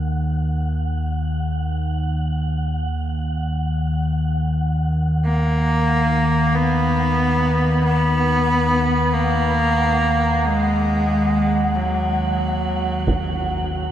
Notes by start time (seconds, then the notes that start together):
Already playing: D#2 D#3 F#5
5.25 A#3 F#5
6.55 B3
7.84 B3
9.14 A#3
10.44 G#3
11.75 F#3
13.07 taiko